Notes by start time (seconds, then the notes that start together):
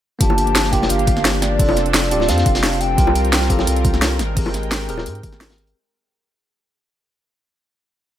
0.19 G1 F3 A#3 D4 F4 G4 A5, kick, closed hi-hat
0.30 high bongo
0.38 closed hi-hat
0.47 closed hi-hat
0.55 snare, closed hi-hat
0.64 snare
0.72 F1 A#3 D4 F4 G4 G5, kick, closed hi-hat
0.82 snare, high bongo
0.89 G1 F5, closed hi-hat
0.99 closed hi-hat
1.07 kick, closed hi-hat
1.17 snare
1.25 snare, closed hi-hat, high bongo
1.42 D5, snare, closed hi-hat
1.58 F1 F3 C4 D4 F4 A4, kick, closed hi-hat, open hi-hat
1.69 high bongo
1.76 snare, closed hi-hat
1.86 closed hi-hat
1.94 D5, snare, closed hi-hat
2.03 snare
2.11 D1 C4 D4 F4 G4, closed hi-hat
2.20 snare, high bongo
2.29 F2 F5, snare, closed hi-hat
2.38 snare, closed hi-hat
2.46 F1, kick, closed hi-hat
2.55 snare, closed hi-hat
2.63 snare, closed hi-hat, high bongo
2.73 closed hi-hat
2.81 G5, closed hi-hat
2.96 C2 G3 C4 F4 G4 A#4, kick, closed hi-hat
3.07 high bongo
3.15 closed hi-hat
3.25 closed hi-hat
3.32 snare, closed hi-hat
3.42 snare
3.49 A#1 C4 F4 G4 A4, kick, closed hi-hat
3.59 snare, high bongo
3.67 C2, closed hi-hat
3.76 closed hi-hat
3.85 kick, closed hi-hat
3.94 snare
4.02 snare, closed hi-hat, high bongo
4.19 G#1 G#3 G5, snare, closed hi-hat
4.35 C4 G4 G#4 A#4, kick, closed hi-hat, open hi-hat
4.46 high bongo
4.54 snare, closed hi-hat
4.63 closed hi-hat
4.71 snare, closed hi-hat
4.81 snare
4.88 D#1 C4 G4 G#4 A#4, closed hi-hat
4.97 snare, high bongo
5.06 G#2, closed hi-hat
5.15 closed hi-hat
5.23 G#1, kick, closed hi-hat
5.33 snare
5.41 snare, closed hi-hat, high bongo
5.50 snare, closed hi-hat
5.58 snare, closed hi-hat
5.67 closed hi-hat